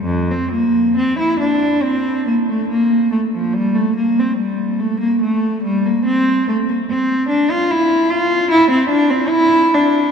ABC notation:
X:1
M:4/4
L:1/16
Q:1/4=72
K:Cmix
V:1 name="Cello"
F,, C B,2 C E D2 C2 B, A, B,2 A, F, | G, A, B, C G,2 A, B, A,2 G, B, C2 A, B, | C2 D F E2 F2 E C D C E2 D2 |]